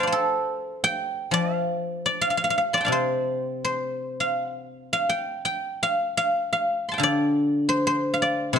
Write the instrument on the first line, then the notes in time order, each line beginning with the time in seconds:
guzheng
Already playing: G5 A5 C6
0.00 D5 F5
0.07 C5
0.12 A4
0.84 G5
1.31 F3 F5
2.06 D5
2.21 F5
2.30 F5
2.37 F5
2.44 F5
2.50 F5
2.58 F5
2.73 D5 C6
2.77 G5 A5
2.85 C3 D5 F5
2.92 C5
3.65 C5
4.20 F5
4.93 F5
5.09 G5
5.45 G5
5.83 F5
6.17 F5
6.53 F5
6.89 A5 C6
6.94 G5
6.98 D3 F5
7.03 D5
7.69 C5
7.87 C5
8.14 F5
8.22 D5
8.53 C3 C5